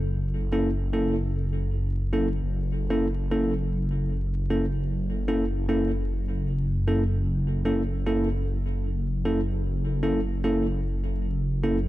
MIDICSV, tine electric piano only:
0, 0, Header, 1, 2, 480
1, 0, Start_track
1, 0, Tempo, 594059
1, 39, Time_signature, 4, 2, 24, 8
1, 9602, End_track
2, 0, Start_track
2, 0, Title_t, "Tine electric piano"
2, 0, Program_c, 0, 4
2, 423, Note_on_c, 0, 58, 78
2, 423, Note_on_c, 0, 61, 75
2, 423, Note_on_c, 0, 69, 85
2, 424, Note_on_c, 0, 64, 72
2, 555, Note_off_c, 0, 58, 0
2, 555, Note_off_c, 0, 61, 0
2, 555, Note_off_c, 0, 69, 0
2, 556, Note_off_c, 0, 64, 0
2, 754, Note_on_c, 0, 58, 80
2, 754, Note_on_c, 0, 69, 85
2, 755, Note_on_c, 0, 61, 72
2, 755, Note_on_c, 0, 64, 70
2, 928, Note_off_c, 0, 58, 0
2, 928, Note_off_c, 0, 61, 0
2, 928, Note_off_c, 0, 64, 0
2, 928, Note_off_c, 0, 69, 0
2, 1719, Note_on_c, 0, 58, 71
2, 1720, Note_on_c, 0, 64, 66
2, 1721, Note_on_c, 0, 69, 81
2, 1722, Note_on_c, 0, 61, 66
2, 1835, Note_off_c, 0, 58, 0
2, 1835, Note_off_c, 0, 64, 0
2, 1836, Note_off_c, 0, 61, 0
2, 1836, Note_off_c, 0, 69, 0
2, 2346, Note_on_c, 0, 58, 78
2, 2347, Note_on_c, 0, 61, 71
2, 2347, Note_on_c, 0, 69, 85
2, 2348, Note_on_c, 0, 64, 76
2, 2477, Note_off_c, 0, 58, 0
2, 2477, Note_off_c, 0, 61, 0
2, 2477, Note_off_c, 0, 64, 0
2, 2477, Note_off_c, 0, 69, 0
2, 2678, Note_on_c, 0, 58, 81
2, 2678, Note_on_c, 0, 69, 86
2, 2679, Note_on_c, 0, 61, 72
2, 2679, Note_on_c, 0, 64, 70
2, 2850, Note_off_c, 0, 58, 0
2, 2850, Note_off_c, 0, 61, 0
2, 2850, Note_off_c, 0, 64, 0
2, 2850, Note_off_c, 0, 69, 0
2, 3638, Note_on_c, 0, 64, 63
2, 3639, Note_on_c, 0, 58, 71
2, 3639, Note_on_c, 0, 61, 66
2, 3639, Note_on_c, 0, 69, 80
2, 3754, Note_off_c, 0, 64, 0
2, 3755, Note_off_c, 0, 58, 0
2, 3755, Note_off_c, 0, 61, 0
2, 3755, Note_off_c, 0, 69, 0
2, 4267, Note_on_c, 0, 64, 72
2, 4267, Note_on_c, 0, 69, 87
2, 4268, Note_on_c, 0, 58, 78
2, 4269, Note_on_c, 0, 61, 73
2, 4397, Note_off_c, 0, 58, 0
2, 4397, Note_off_c, 0, 64, 0
2, 4397, Note_off_c, 0, 69, 0
2, 4398, Note_off_c, 0, 61, 0
2, 4596, Note_on_c, 0, 61, 73
2, 4597, Note_on_c, 0, 58, 82
2, 4597, Note_on_c, 0, 69, 84
2, 4598, Note_on_c, 0, 64, 71
2, 4769, Note_off_c, 0, 58, 0
2, 4769, Note_off_c, 0, 61, 0
2, 4769, Note_off_c, 0, 64, 0
2, 4769, Note_off_c, 0, 69, 0
2, 5555, Note_on_c, 0, 64, 67
2, 5556, Note_on_c, 0, 58, 72
2, 5556, Note_on_c, 0, 61, 64
2, 5558, Note_on_c, 0, 69, 83
2, 5673, Note_off_c, 0, 61, 0
2, 5673, Note_off_c, 0, 64, 0
2, 5674, Note_off_c, 0, 58, 0
2, 5674, Note_off_c, 0, 69, 0
2, 6183, Note_on_c, 0, 64, 70
2, 6184, Note_on_c, 0, 58, 80
2, 6184, Note_on_c, 0, 61, 72
2, 6185, Note_on_c, 0, 69, 89
2, 6315, Note_off_c, 0, 58, 0
2, 6315, Note_off_c, 0, 61, 0
2, 6315, Note_off_c, 0, 64, 0
2, 6316, Note_off_c, 0, 69, 0
2, 6516, Note_on_c, 0, 64, 75
2, 6517, Note_on_c, 0, 58, 81
2, 6517, Note_on_c, 0, 61, 71
2, 6517, Note_on_c, 0, 69, 89
2, 6689, Note_off_c, 0, 58, 0
2, 6689, Note_off_c, 0, 61, 0
2, 6689, Note_off_c, 0, 64, 0
2, 6689, Note_off_c, 0, 69, 0
2, 7476, Note_on_c, 0, 69, 85
2, 7477, Note_on_c, 0, 58, 74
2, 7477, Note_on_c, 0, 61, 66
2, 7477, Note_on_c, 0, 64, 70
2, 7594, Note_off_c, 0, 58, 0
2, 7594, Note_off_c, 0, 61, 0
2, 7594, Note_off_c, 0, 64, 0
2, 7594, Note_off_c, 0, 69, 0
2, 8104, Note_on_c, 0, 64, 72
2, 8105, Note_on_c, 0, 61, 74
2, 8105, Note_on_c, 0, 69, 92
2, 8106, Note_on_c, 0, 58, 78
2, 8235, Note_off_c, 0, 64, 0
2, 8236, Note_off_c, 0, 58, 0
2, 8236, Note_off_c, 0, 61, 0
2, 8236, Note_off_c, 0, 69, 0
2, 8436, Note_on_c, 0, 61, 74
2, 8437, Note_on_c, 0, 58, 84
2, 8437, Note_on_c, 0, 69, 88
2, 8438, Note_on_c, 0, 64, 73
2, 8609, Note_off_c, 0, 58, 0
2, 8609, Note_off_c, 0, 61, 0
2, 8609, Note_off_c, 0, 69, 0
2, 8610, Note_off_c, 0, 64, 0
2, 9401, Note_on_c, 0, 58, 72
2, 9401, Note_on_c, 0, 61, 65
2, 9401, Note_on_c, 0, 64, 69
2, 9401, Note_on_c, 0, 69, 81
2, 9516, Note_off_c, 0, 58, 0
2, 9516, Note_off_c, 0, 61, 0
2, 9516, Note_off_c, 0, 64, 0
2, 9516, Note_off_c, 0, 69, 0
2, 9602, End_track
0, 0, End_of_file